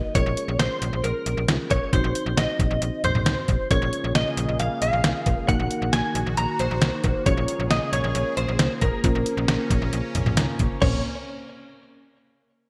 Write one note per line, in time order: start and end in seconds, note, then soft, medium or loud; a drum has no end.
0.00 0.12 A#3 medium
0.00 0.12 D#4 medium
0.00 0.11 F#4 medium
0.00 0.12 A#4 medium
0.00 0.15 D#5 loud
0.15 0.24 A#1 loud
0.15 1.46 C#4 medium
0.15 1.46 F4 medium
0.15 1.46 G#4 medium
0.15 1.46 A#4 medium
0.15 0.59 C#5 loud
0.15 kick loud
0.15 closed hi-hat medium
0.26 0.35 A#1 loud
0.37 closed hi-hat medium
0.48 0.57 A#1 loud
0.59 0.68 A#1 loud
0.59 1.05 C5 loud
0.59 snare loud
0.59 closed hi-hat medium
0.82 0.91 A#1 loud
0.82 closed hi-hat medium
0.93 1.02 A#1 loud
1.04 1.13 A#1 loud
1.04 1.45 A#4 medium
1.04 closed hi-hat medium
1.26 1.35 A#1 loud
1.26 closed hi-hat medium
1.37 1.46 A#1 loud
1.48 1.57 C2 loud
1.48 1.93 C#4 medium
1.48 1.93 F4 soft
1.48 1.93 G#4 soft
1.48 1.93 A#4 medium
1.48 snare loud
1.48 closed hi-hat medium
1.70 1.80 A#1 medium
1.70 1.93 C#5 medium
1.70 kick medium
1.70 closed hi-hat medium
1.70 cowbell medium
1.93 2.02 A#1 loud
1.93 3.67 C4 medium
1.93 3.67 D#4 medium
1.93 3.67 F#4 medium
1.93 3.67 C5 medium
1.93 2.37 C5 loud
1.93 kick loud
1.93 closed hi-hat medium
2.04 2.13 A#1 loud
2.15 closed hi-hat medium
2.26 2.35 A#1 loud
2.37 2.46 A#1 loud
2.37 3.04 D#5 medium
2.37 snare loud
2.37 closed hi-hat medium
2.59 2.68 A#1 loud
2.59 kick medium
2.59 closed hi-hat medium
2.71 2.79 A#1 loud
2.82 2.91 A#1 loud
2.82 closed hi-hat medium
3.04 3.13 A#1 loud
3.04 3.67 C5 medium
3.04 closed hi-hat medium
3.04 mid tom medium
3.15 3.24 A#1 loud
3.15 mid tom medium
3.26 3.35 C2 medium
3.26 snare loud
3.26 closed hi-hat medium
3.48 3.57 A#1 loud
3.48 kick medium
3.48 closed hi-hat medium
3.71 3.80 A#1 loud
3.71 5.47 C#3 medium
3.71 10.78 A#3 medium
3.71 5.45 C#4 medium
3.71 5.45 F4 medium
3.71 5.45 G#4 medium
3.71 5.47 G#4 medium
3.71 5.45 A#4 medium
3.71 4.12 C#5 loud
3.71 kick loud
3.71 closed hi-hat medium
3.82 3.91 A#1 loud
3.93 closed hi-hat medium
4.04 4.13 A#1 loud
4.15 4.24 A#1 loud
4.15 4.59 D#5 loud
4.15 snare loud
4.15 closed hi-hat medium
4.37 4.46 A#1 loud
4.37 closed hi-hat medium
4.49 4.57 A#1 medium
4.60 4.69 A#1 loud
4.60 4.80 F5 loud
4.60 closed hi-hat medium
4.82 4.91 A#1 loud
4.82 5.48 F5 loud
4.82 closed hi-hat medium
4.93 5.02 A#1 loud
5.04 5.13 C2 medium
5.04 snare loud
5.04 closed hi-hat medium
5.26 5.35 A#1 medium
5.26 kick medium
5.26 closed hi-hat medium
5.26 cowbell medium
5.48 5.57 A#1 loud
5.48 7.25 D#3 medium
5.48 7.23 A#3 medium
5.48 7.23 D#4 medium
5.48 7.23 F#4 medium
5.48 7.25 F#4 medium
5.48 7.23 A#4 medium
5.48 5.93 F#5 loud
5.48 kick loud
5.48 closed hi-hat medium
5.59 5.68 A#1 loud
5.71 closed hi-hat medium
5.82 5.91 A#1 loud
5.93 6.02 A#1 loud
5.93 6.37 G#5 loud
5.93 snare loud
5.93 closed hi-hat medium
6.15 6.24 A#1 loud
6.15 closed hi-hat medium
6.26 6.35 A#1 loud
6.37 6.46 A#1 loud
6.37 6.60 A#5 loud
6.37 closed hi-hat medium
6.59 6.69 A#1 loud
6.59 7.26 C5 loud
6.59 closed hi-hat medium
6.71 6.80 A#1 loud
6.82 6.91 C2 medium
6.82 snare loud
6.82 closed hi-hat medium
7.04 7.13 A#1 loud
7.04 kick medium
7.04 closed hi-hat medium
7.04 cowbell medium
7.26 7.35 A#1 loud
7.26 9.02 C#3 medium
7.26 9.00 C#4 medium
7.26 9.00 F4 medium
7.26 9.00 G#4 medium
7.26 9.02 G#4 medium
7.26 9.00 A#4 medium
7.26 7.70 C#5 loud
7.26 kick loud
7.26 closed hi-hat medium
7.37 7.46 A#1 loud
7.48 closed hi-hat medium
7.60 7.68 A#1 loud
7.71 7.79 A#1 loud
7.71 7.92 D#5 loud
7.71 snare loud
7.71 closed hi-hat medium
7.93 8.02 A#1 loud
7.93 8.37 C#5 loud
7.93 closed hi-hat medium
8.04 8.13 A#1 loud
8.15 8.24 A#1 loud
8.15 closed hi-hat medium
8.37 8.46 A#1 medium
8.37 8.83 C5 loud
8.37 closed hi-hat medium
8.48 8.57 A#1 loud
8.59 8.68 C2 loud
8.59 snare loud
8.59 closed hi-hat medium
8.81 8.91 A#1 loud
8.81 10.33 A#4 medium
8.81 kick medium
8.81 closed hi-hat medium
8.81 cowbell medium
9.04 9.13 A#1 loud
9.04 10.80 C#3 medium
9.04 10.80 C#4 medium
9.04 10.78 C#4 medium
9.04 10.78 F4 medium
9.04 10.78 A#4 medium
9.04 10.78 C5 medium
9.04 kick loud
9.04 closed hi-hat medium
9.15 9.24 A#1 loud
9.26 closed hi-hat medium
9.37 9.46 A#1 loud
9.48 9.57 A#1 loud
9.48 snare loud
9.48 closed hi-hat medium
9.70 9.79 A#1 loud
9.70 kick medium
9.70 closed hi-hat medium
9.82 9.91 A#1 loud
9.93 10.02 A#1 loud
9.93 closed hi-hat medium
10.15 10.24 A#1 loud
10.15 closed hi-hat medium
10.15 mid tom medium
10.26 10.35 A#1 loud
10.26 mid tom medium
10.37 10.46 C2 loud
10.37 10.79 A#5 medium
10.37 snare loud
10.37 closed hi-hat medium
10.59 10.68 A#1 medium
10.59 kick medium
10.59 closed hi-hat medium
10.82 11.02 A#1 loud
10.82 11.02 C3 medium
10.82 11.02 A#3 medium
10.82 11.02 C#4 medium
10.82 11.02 A#4 medium
10.82 11.02 C5 medium
10.82 11.02 C#5 medium
10.82 kick loud
10.82 floor tom loud
10.82 crash medium